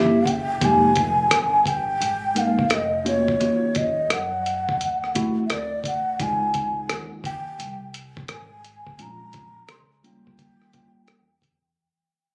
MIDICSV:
0, 0, Header, 1, 6, 480
1, 0, Start_track
1, 0, Key_signature, -4, "minor"
1, 0, Tempo, 697674
1, 422, Time_signature, 4, 2, 24, 8
1, 8496, End_track
2, 0, Start_track
2, 0, Title_t, "Bansuri"
2, 0, Program_c, 0, 73
2, 0, Note_on_c, 0, 76, 90
2, 198, Note_on_c, 0, 79, 94
2, 209, Note_off_c, 0, 76, 0
2, 444, Note_on_c, 0, 80, 100
2, 454, Note_off_c, 0, 79, 0
2, 1159, Note_on_c, 0, 79, 102
2, 1169, Note_off_c, 0, 80, 0
2, 1644, Note_on_c, 0, 77, 99
2, 1655, Note_off_c, 0, 79, 0
2, 1883, Note_on_c, 0, 75, 87
2, 1893, Note_off_c, 0, 77, 0
2, 2112, Note_off_c, 0, 75, 0
2, 2120, Note_on_c, 0, 73, 90
2, 2596, Note_on_c, 0, 75, 80
2, 2606, Note_off_c, 0, 73, 0
2, 2843, Note_on_c, 0, 78, 81
2, 2853, Note_off_c, 0, 75, 0
2, 3590, Note_off_c, 0, 78, 0
2, 3760, Note_on_c, 0, 76, 64
2, 3800, Note_on_c, 0, 74, 85
2, 3810, Note_off_c, 0, 76, 0
2, 4031, Note_off_c, 0, 74, 0
2, 4040, Note_on_c, 0, 78, 85
2, 4278, Note_on_c, 0, 80, 80
2, 4288, Note_off_c, 0, 78, 0
2, 4750, Note_off_c, 0, 80, 0
2, 4995, Note_on_c, 0, 79, 98
2, 5441, Note_off_c, 0, 79, 0
2, 5729, Note_on_c, 0, 80, 80
2, 6205, Note_on_c, 0, 82, 82
2, 6216, Note_off_c, 0, 80, 0
2, 6674, Note_off_c, 0, 82, 0
2, 6677, Note_on_c, 0, 84, 93
2, 6729, Note_off_c, 0, 84, 0
2, 6916, Note_on_c, 0, 79, 82
2, 7842, Note_off_c, 0, 79, 0
2, 8496, End_track
3, 0, Start_track
3, 0, Title_t, "Tine electric piano"
3, 0, Program_c, 1, 4
3, 0, Note_on_c, 1, 58, 92
3, 0, Note_on_c, 1, 61, 78
3, 0, Note_on_c, 1, 64, 77
3, 0, Note_on_c, 1, 67, 91
3, 130, Note_off_c, 1, 58, 0
3, 131, Note_off_c, 1, 61, 0
3, 133, Note_off_c, 1, 64, 0
3, 134, Note_off_c, 1, 67, 0
3, 418, Note_on_c, 1, 56, 63
3, 421, Note_on_c, 1, 58, 63
3, 424, Note_on_c, 1, 63, 59
3, 428, Note_on_c, 1, 67, 73
3, 610, Note_off_c, 1, 56, 0
3, 612, Note_off_c, 1, 58, 0
3, 613, Note_off_c, 1, 63, 0
3, 615, Note_off_c, 1, 67, 0
3, 1617, Note_on_c, 1, 56, 69
3, 1619, Note_on_c, 1, 58, 57
3, 1624, Note_on_c, 1, 63, 65
3, 1628, Note_on_c, 1, 70, 67
3, 1810, Note_off_c, 1, 56, 0
3, 1811, Note_off_c, 1, 58, 0
3, 1813, Note_off_c, 1, 63, 0
3, 1815, Note_off_c, 1, 70, 0
3, 2096, Note_on_c, 1, 58, 67
3, 2099, Note_on_c, 1, 61, 67
3, 2102, Note_on_c, 1, 65, 68
3, 2104, Note_on_c, 1, 66, 76
3, 2289, Note_off_c, 1, 58, 0
3, 2290, Note_off_c, 1, 61, 0
3, 2292, Note_off_c, 1, 65, 0
3, 2293, Note_off_c, 1, 66, 0
3, 2339, Note_on_c, 1, 58, 61
3, 2342, Note_on_c, 1, 61, 58
3, 2346, Note_on_c, 1, 65, 62
3, 2349, Note_on_c, 1, 66, 64
3, 2643, Note_off_c, 1, 58, 0
3, 2645, Note_off_c, 1, 61, 0
3, 2647, Note_off_c, 1, 65, 0
3, 2649, Note_off_c, 1, 66, 0
3, 3541, Note_on_c, 1, 57, 78
3, 3545, Note_on_c, 1, 60, 77
3, 3548, Note_on_c, 1, 64, 84
3, 3549, Note_on_c, 1, 66, 98
3, 3732, Note_off_c, 1, 57, 0
3, 3734, Note_off_c, 1, 60, 0
3, 3735, Note_off_c, 1, 64, 0
3, 3736, Note_off_c, 1, 66, 0
3, 4261, Note_on_c, 1, 56, 66
3, 4263, Note_on_c, 1, 60, 64
3, 4266, Note_on_c, 1, 63, 55
3, 4269, Note_on_c, 1, 65, 65
3, 4948, Note_off_c, 1, 56, 0
3, 4949, Note_off_c, 1, 60, 0
3, 4951, Note_off_c, 1, 63, 0
3, 4952, Note_off_c, 1, 65, 0
3, 6181, Note_on_c, 1, 56, 59
3, 6185, Note_on_c, 1, 60, 49
3, 6188, Note_on_c, 1, 61, 57
3, 6191, Note_on_c, 1, 65, 59
3, 6547, Note_off_c, 1, 56, 0
3, 6549, Note_off_c, 1, 60, 0
3, 6550, Note_off_c, 1, 61, 0
3, 6552, Note_off_c, 1, 65, 0
3, 6904, Note_on_c, 1, 55, 64
3, 6908, Note_on_c, 1, 58, 56
3, 6910, Note_on_c, 1, 61, 61
3, 6913, Note_on_c, 1, 65, 63
3, 7372, Note_off_c, 1, 55, 0
3, 7375, Note_off_c, 1, 58, 0
3, 7378, Note_off_c, 1, 61, 0
3, 7380, Note_on_c, 1, 55, 60
3, 7383, Note_off_c, 1, 65, 0
3, 7383, Note_on_c, 1, 58, 55
3, 7387, Note_on_c, 1, 61, 58
3, 7392, Note_on_c, 1, 65, 62
3, 7684, Note_off_c, 1, 55, 0
3, 7685, Note_off_c, 1, 58, 0
3, 7687, Note_off_c, 1, 61, 0
3, 7690, Note_off_c, 1, 65, 0
3, 8496, End_track
4, 0, Start_track
4, 0, Title_t, "Upright bass"
4, 0, Program_c, 2, 32
4, 0, Note_on_c, 2, 30, 92
4, 397, Note_off_c, 2, 30, 0
4, 422, Note_on_c, 2, 29, 109
4, 878, Note_off_c, 2, 29, 0
4, 900, Note_on_c, 2, 31, 88
4, 1357, Note_off_c, 2, 31, 0
4, 1380, Note_on_c, 2, 32, 85
4, 1837, Note_off_c, 2, 32, 0
4, 1859, Note_on_c, 2, 29, 92
4, 2317, Note_off_c, 2, 29, 0
4, 2341, Note_on_c, 2, 39, 113
4, 2797, Note_off_c, 2, 39, 0
4, 2820, Note_on_c, 2, 42, 79
4, 3303, Note_off_c, 2, 42, 0
4, 3303, Note_on_c, 2, 38, 97
4, 3759, Note_off_c, 2, 38, 0
4, 3782, Note_on_c, 2, 38, 81
4, 4238, Note_off_c, 2, 38, 0
4, 4263, Note_on_c, 2, 37, 100
4, 4718, Note_off_c, 2, 37, 0
4, 4742, Note_on_c, 2, 39, 78
4, 5198, Note_off_c, 2, 39, 0
4, 5220, Note_on_c, 2, 36, 86
4, 5677, Note_off_c, 2, 36, 0
4, 5701, Note_on_c, 2, 32, 77
4, 6158, Note_off_c, 2, 32, 0
4, 6181, Note_on_c, 2, 34, 91
4, 6638, Note_off_c, 2, 34, 0
4, 6662, Note_on_c, 2, 37, 86
4, 7118, Note_off_c, 2, 37, 0
4, 7146, Note_on_c, 2, 39, 80
4, 7521, Note_off_c, 2, 39, 0
4, 7624, Note_on_c, 2, 40, 80
4, 8079, Note_off_c, 2, 40, 0
4, 8496, End_track
5, 0, Start_track
5, 0, Title_t, "Muted upright bass strokes"
5, 7540, Note_on_c, 9, 29, 40
5, 7609, Note_off_c, 9, 29, 0
5, 8496, End_track
6, 0, Start_track
6, 0, Title_t, "Drums"
6, 176, Note_on_c, 9, 36, 68
6, 187, Note_on_c, 9, 42, 65
6, 245, Note_off_c, 9, 36, 0
6, 256, Note_off_c, 9, 42, 0
6, 423, Note_on_c, 9, 36, 90
6, 423, Note_on_c, 9, 42, 71
6, 491, Note_off_c, 9, 36, 0
6, 492, Note_off_c, 9, 42, 0
6, 657, Note_on_c, 9, 42, 63
6, 666, Note_on_c, 9, 36, 87
6, 726, Note_off_c, 9, 42, 0
6, 735, Note_off_c, 9, 36, 0
6, 902, Note_on_c, 9, 37, 126
6, 902, Note_on_c, 9, 42, 93
6, 971, Note_off_c, 9, 37, 0
6, 971, Note_off_c, 9, 42, 0
6, 1139, Note_on_c, 9, 36, 78
6, 1148, Note_on_c, 9, 42, 61
6, 1208, Note_off_c, 9, 36, 0
6, 1216, Note_off_c, 9, 42, 0
6, 1387, Note_on_c, 9, 42, 86
6, 1456, Note_off_c, 9, 42, 0
6, 1624, Note_on_c, 9, 42, 76
6, 1693, Note_off_c, 9, 42, 0
6, 1780, Note_on_c, 9, 36, 84
6, 1849, Note_off_c, 9, 36, 0
6, 1858, Note_on_c, 9, 42, 84
6, 1862, Note_on_c, 9, 37, 107
6, 1927, Note_off_c, 9, 42, 0
6, 1931, Note_off_c, 9, 37, 0
6, 2106, Note_on_c, 9, 42, 64
6, 2175, Note_off_c, 9, 42, 0
6, 2259, Note_on_c, 9, 36, 85
6, 2328, Note_off_c, 9, 36, 0
6, 2344, Note_on_c, 9, 42, 68
6, 2413, Note_off_c, 9, 42, 0
6, 2579, Note_on_c, 9, 42, 64
6, 2587, Note_on_c, 9, 36, 93
6, 2648, Note_off_c, 9, 42, 0
6, 2655, Note_off_c, 9, 36, 0
6, 2823, Note_on_c, 9, 37, 108
6, 2823, Note_on_c, 9, 42, 88
6, 2892, Note_off_c, 9, 37, 0
6, 2892, Note_off_c, 9, 42, 0
6, 3070, Note_on_c, 9, 42, 61
6, 3139, Note_off_c, 9, 42, 0
6, 3225, Note_on_c, 9, 36, 89
6, 3294, Note_off_c, 9, 36, 0
6, 3308, Note_on_c, 9, 42, 75
6, 3377, Note_off_c, 9, 42, 0
6, 3466, Note_on_c, 9, 37, 29
6, 3534, Note_off_c, 9, 37, 0
6, 3546, Note_on_c, 9, 42, 85
6, 3550, Note_on_c, 9, 36, 87
6, 3615, Note_off_c, 9, 42, 0
6, 3618, Note_off_c, 9, 36, 0
6, 3782, Note_on_c, 9, 42, 86
6, 3786, Note_on_c, 9, 37, 102
6, 3850, Note_off_c, 9, 42, 0
6, 3854, Note_off_c, 9, 37, 0
6, 4016, Note_on_c, 9, 36, 65
6, 4027, Note_on_c, 9, 42, 68
6, 4085, Note_off_c, 9, 36, 0
6, 4096, Note_off_c, 9, 42, 0
6, 4263, Note_on_c, 9, 36, 86
6, 4264, Note_on_c, 9, 42, 76
6, 4331, Note_off_c, 9, 36, 0
6, 4333, Note_off_c, 9, 42, 0
6, 4499, Note_on_c, 9, 42, 67
6, 4506, Note_on_c, 9, 36, 78
6, 4568, Note_off_c, 9, 42, 0
6, 4575, Note_off_c, 9, 36, 0
6, 4744, Note_on_c, 9, 37, 123
6, 4744, Note_on_c, 9, 42, 90
6, 4813, Note_off_c, 9, 37, 0
6, 4813, Note_off_c, 9, 42, 0
6, 4980, Note_on_c, 9, 36, 78
6, 4990, Note_on_c, 9, 42, 57
6, 5049, Note_off_c, 9, 36, 0
6, 5059, Note_off_c, 9, 42, 0
6, 5227, Note_on_c, 9, 42, 84
6, 5296, Note_off_c, 9, 42, 0
6, 5464, Note_on_c, 9, 42, 80
6, 5533, Note_off_c, 9, 42, 0
6, 5620, Note_on_c, 9, 36, 86
6, 5689, Note_off_c, 9, 36, 0
6, 5699, Note_on_c, 9, 42, 76
6, 5703, Note_on_c, 9, 37, 99
6, 5768, Note_off_c, 9, 42, 0
6, 5772, Note_off_c, 9, 37, 0
6, 5948, Note_on_c, 9, 42, 64
6, 6017, Note_off_c, 9, 42, 0
6, 6100, Note_on_c, 9, 36, 81
6, 6169, Note_off_c, 9, 36, 0
6, 6185, Note_on_c, 9, 42, 72
6, 6254, Note_off_c, 9, 42, 0
6, 6419, Note_on_c, 9, 42, 64
6, 6427, Note_on_c, 9, 36, 87
6, 6488, Note_off_c, 9, 42, 0
6, 6496, Note_off_c, 9, 36, 0
6, 6664, Note_on_c, 9, 37, 105
6, 6664, Note_on_c, 9, 42, 80
6, 6733, Note_off_c, 9, 37, 0
6, 6733, Note_off_c, 9, 42, 0
6, 6910, Note_on_c, 9, 42, 51
6, 6979, Note_off_c, 9, 42, 0
6, 7066, Note_on_c, 9, 36, 84
6, 7135, Note_off_c, 9, 36, 0
6, 7147, Note_on_c, 9, 36, 82
6, 7148, Note_on_c, 9, 42, 69
6, 7216, Note_off_c, 9, 36, 0
6, 7217, Note_off_c, 9, 42, 0
6, 7304, Note_on_c, 9, 37, 28
6, 7372, Note_off_c, 9, 37, 0
6, 7385, Note_on_c, 9, 42, 70
6, 7390, Note_on_c, 9, 36, 85
6, 7454, Note_off_c, 9, 42, 0
6, 7459, Note_off_c, 9, 36, 0
6, 7620, Note_on_c, 9, 42, 75
6, 7624, Note_on_c, 9, 37, 99
6, 7689, Note_off_c, 9, 42, 0
6, 7693, Note_off_c, 9, 37, 0
6, 7857, Note_on_c, 9, 36, 61
6, 7867, Note_on_c, 9, 42, 60
6, 7925, Note_off_c, 9, 36, 0
6, 7936, Note_off_c, 9, 42, 0
6, 8496, End_track
0, 0, End_of_file